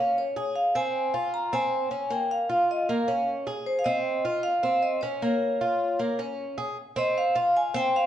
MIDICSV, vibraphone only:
0, 0, Header, 1, 2, 480
1, 0, Start_track
1, 0, Key_signature, -4, "minor"
1, 0, Tempo, 388853
1, 688, Time_signature, 4, 2, 24, 8
1, 9954, End_track
2, 0, Start_track
2, 0, Title_t, "Vibraphone"
2, 0, Program_c, 0, 11
2, 0, Note_on_c, 0, 77, 85
2, 180, Note_off_c, 0, 77, 0
2, 225, Note_on_c, 0, 73, 76
2, 552, Note_off_c, 0, 73, 0
2, 686, Note_on_c, 0, 77, 83
2, 934, Note_off_c, 0, 77, 0
2, 938, Note_on_c, 0, 80, 96
2, 1604, Note_off_c, 0, 80, 0
2, 1652, Note_on_c, 0, 82, 90
2, 1873, Note_off_c, 0, 82, 0
2, 1897, Note_on_c, 0, 80, 104
2, 2619, Note_on_c, 0, 79, 80
2, 2634, Note_off_c, 0, 80, 0
2, 2855, Note_on_c, 0, 77, 86
2, 2861, Note_off_c, 0, 79, 0
2, 3299, Note_off_c, 0, 77, 0
2, 3345, Note_on_c, 0, 75, 78
2, 3578, Note_on_c, 0, 77, 75
2, 3584, Note_off_c, 0, 75, 0
2, 4020, Note_off_c, 0, 77, 0
2, 4523, Note_on_c, 0, 72, 80
2, 4669, Note_off_c, 0, 72, 0
2, 4677, Note_on_c, 0, 77, 73
2, 4745, Note_on_c, 0, 75, 96
2, 4766, Note_off_c, 0, 77, 0
2, 5471, Note_on_c, 0, 77, 95
2, 5499, Note_off_c, 0, 75, 0
2, 5926, Note_off_c, 0, 77, 0
2, 5956, Note_on_c, 0, 75, 83
2, 6185, Note_off_c, 0, 75, 0
2, 6186, Note_on_c, 0, 73, 79
2, 8066, Note_off_c, 0, 73, 0
2, 8622, Note_on_c, 0, 75, 88
2, 8860, Note_on_c, 0, 77, 96
2, 8861, Note_off_c, 0, 75, 0
2, 9341, Note_on_c, 0, 80, 96
2, 9347, Note_off_c, 0, 77, 0
2, 9580, Note_off_c, 0, 80, 0
2, 9584, Note_on_c, 0, 79, 102
2, 9798, Note_off_c, 0, 79, 0
2, 9829, Note_on_c, 0, 77, 89
2, 9954, Note_off_c, 0, 77, 0
2, 9954, End_track
0, 0, End_of_file